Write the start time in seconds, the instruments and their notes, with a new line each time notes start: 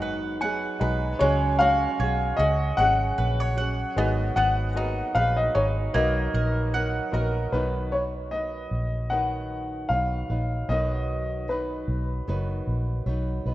Already playing: nylon-string guitar G#2 D#3 F#3 B3 D#4 G#4, upright piano G#3 D#4 F#4 B4 D#5, mandolin B3 D#4 F#5
0.02 fingered electric bass F#1, mandolin B4, upright piano F#5
0.41 nylon-string guitar F#3 B3 D#4 G#4, mandolin F#5, upright piano G#5
0.80 fingered electric bass B1, upright piano G#3 D#4 F#4 B4 A#5, nylon-string guitar B3 D#4 G#4, mandolin B4
0.84 nylon-string guitar F#3
1.19 fingered electric bass C#2, nylon-string guitar C#3 F#3 C#4 F#4 G#4, upright piano G#3 C#4 F#4 C#5, mandolin G#3
1.59 upright piano G#3 C#4 F#4 C#5 F5, mandolin F#4
2.00 fingered electric bass B1, nylon-string guitar F#3 C#4 F#4 G#4, mandolin C#5
2.37 fingered electric bass C#2, mandolin F#4, nylon-string guitar G#4, upright piano D#5
2.42 nylon-string guitar C#4 F#4
2.77 fingered electric bass G#1, nylon-string guitar C#3 F#3 C#4 F#4 G#4, upright piano F#5, mandolin F#5
3.18 fingered electric bass A#1, mandolin B4
3.40 mandolin C#5
3.57 nylon-string guitar F#3 C#4 F#4 G#4, mandolin F#5
3.96 fingered electric bass G#1, nylon-string guitar G#2 D#3 F#3 B3 D#4 G#4, upright piano B3 F#4 G#4 D#5, mandolin B3
4.36 fingered electric bass G#1, mandolin B3 F#5, upright piano F#5
4.75 upright piano A#3 F#4 G#4 D#5, mandolin D#4
4.81 upright piano B3
5.15 fingered electric bass A#1, nylon-string guitar F#3 B3 D#4, mandolin B4, upright piano F5
5.19 nylon-string guitar G#4
5.37 upright piano D#5
5.55 fingered electric bass G#1, nylon-string guitar F#3 B3 D#4 G#4, mandolin D#4, upright piano C#5
5.94 fingered electric bass B1, nylon-string guitar D#3 F#3 B3 D#4 A#4, mandolin A#3, upright piano B3 F#4 A#4 D#5
6.34 fingered electric bass A#1, mandolin A#4
6.74 nylon-string guitar F#3 B3 D#4 A#4, mandolin F#5
7.11 fingered electric bass A#1, upright piano B3 F#4 A#4 D#5, nylon-string guitar D#4 A#4, mandolin A#4
7.15 nylon-string guitar F#3 B3
7.52 fingered electric bass B1, nylon-string guitar B2 D#3 F#3 B3 D#4 B4, upright piano B4
7.92 nylon-string guitar F#3 B3 D#4 B4, upright piano C#5
8.31 nylon-string guitar F#3 B3 D#4 B4, upright piano D#5
8.71 fingered electric bass A#1
9.10 nylon-string guitar D#3 F#3 B3 D#4 B4, upright piano F#5
9.89 fingered electric bass B1, nylon-string guitar F#3 B3 D#4, upright piano F5
9.93 nylon-string guitar B4
10.30 fingered electric bass A#1, nylon-string guitar F#3 B3 D#4 B4
10.69 fingered electric bass B1, nylon-string guitar B2 D#3 F#3 B3 D#4 B4, upright piano D#5
11.48 nylon-string guitar F#3 B3 D#4 B4, upright piano B4
11.88 fingered electric bass B1
12.28 fingered electric bass F#1, nylon-string guitar D#3 F#3 B3 D#4 B4
12.67 fingered electric bass A#1
13.06 fingered electric bass B1, nylon-string guitar F#3 B3 D#4 B4
13.46 fingered electric bass B1, nylon-string guitar F#3 B3 D#4 B4